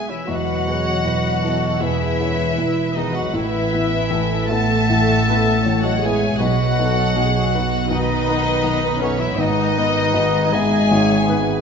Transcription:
Already playing: B1 B3 F#4 G#4 B4 E5
0.09 E3 E4 C#5 E5
0.27 E1 E2 F#3 F#4 B4 D#5 F#5
0.67 B3 G#4 B4 C#5
1.04 E1 E2 B4
1.43 B3 E4 A4 B4
1.80 E1 E2 E3 E4 G#4 B4 E5
2.20 B3 G#4 B4 C#5
2.58 E1 E2 B4
2.95 D#3 B3 D#4 G#4 B4 D#5
3.12 F#3 F#4 D#5 F#5
3.32 A1 A2 E3 E4 B4 E5
3.72 B3 E4 B4
4.10 A1 A2 A4
4.49 A3 B3 E4 A4 B4 E5 F#5 A5
4.90 A1 A2
5.29 B3 E4 B4
5.66 A1 A2 C#5
5.82 F#3 F#4 D#5 F#5
6.01 G#3 B3 E4 G#4 E5 G#5
6.05 B4
6.39 B1 B2 F#3 F#4 B4 D#5 F#5
6.78 B3 D#4 A4 B4
7.16 B1 B2 G#4
7.54 B3 D#4 F#4 B4
7.89 B1 B2 D#3 D#4 B4 D#5
8.28 B3 D#4 B4
8.64 B1 B2
8.99 C#3 B3 C#4 D#4 A4 B4 C#5
9.19 E3 E4 C#5 E5
9.37 G#1 G#2 D#3 D#4 B4 D#5
9.78 B3 D#4 B4
10.14 G#1 G#2
10.52 D#3 G#3 B3 G#4 B4 E5 G#5
10.91 G#1 G#2 C#5
11.28 D#3 B3 B4

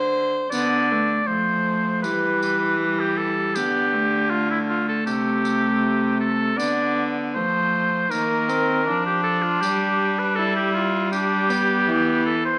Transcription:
Already playing: D3 C5
0.50 D3 B3 D5, tambourine
0.91 A3
1.27 F3 A3 C5
2.02 E3 G3 B4, tambourine
2.42 tambourine
2.80 G3
3.00 G4
3.18 A4
3.55 D3 B3 G4, tambourine
3.94 A3
4.30 A3 F4
4.51 E4
4.68 F4
4.88 A4
5.06 C3 G4, tambourine
5.45 tambourine
6.20 A4
6.57 D3 B3 D5, tambourine
7.35 F3 A3 C5
8.10 D#3 A#3 A#4, tambourine
8.49 C4, tambourine
8.87 F3 D4
9.06 G4
9.23 A4
9.43 F4
9.61 G3 G4, tambourine
10.19 B4
10.35 E4 A4
10.56 G4
10.74 F4
11.12 D4 G4, tambourine
11.49 B3, tambourine
11.87 E3
12.26 A4
12.45 C5

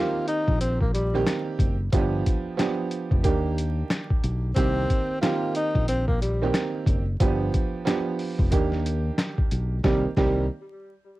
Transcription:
Already playing: D#3 A#3 C4 F4 G4
0.28 D#4, closed hi-hat
0.48 A#1, kick
0.60 C4, closed hi-hat
0.81 A#3, kick
0.94 G3, closed hi-hat
1.14 D#3 A#3 C4 G4
1.26 cross-stick, snare, closed hi-hat
1.59 F#1, kick, closed hi-hat
1.92 G1 F3 B3 D4 G4, kick, closed hi-hat
2.26 kick, closed hi-hat
2.57 F3 B3 D4 G4, cross-stick, snare, closed hi-hat
2.91 closed hi-hat
3.11 F1, kick
3.23 D#2 D#3 A#3 D4 G4, kick, closed hi-hat
3.58 closed hi-hat
3.90 cross-stick, snare, closed hi-hat
4.10 kick
4.24 B1, closed hi-hat
4.56 C2 D#3 A#3 C4 G4, kick, closed hi-hat
4.90 kick, closed hi-hat
5.21 D#3 A#3 C4 F4 G4, cross-stick, snare, closed hi-hat
5.55 D#4, closed hi-hat
5.75 A#1, kick
5.88 C4, closed hi-hat
6.08 A#3, kick
6.21 G3, closed hi-hat
6.42 D#3 A#3 C4 G4
6.54 cross-stick, snare, closed hi-hat
6.86 F#1, kick, closed hi-hat
7.20 G1 F3 B3 D4 G4, kick, closed hi-hat
7.54 kick, closed hi-hat
7.85 F3 B3 D4 G4, cross-stick, snare, closed hi-hat
8.19 open hi-hat
8.39 F1, kick
8.51 D#2 D#3 A#3 D4 G4, kick, closed hi-hat
8.72 snare
8.86 closed hi-hat
9.18 cross-stick, snare, closed hi-hat
9.38 kick
9.51 B1, closed hi-hat
9.84 C2 D#3 G3 A#3 C4 G4, kick, snare
10.16 C2 D#3 G3 A#3 C4 G4, kick, snare

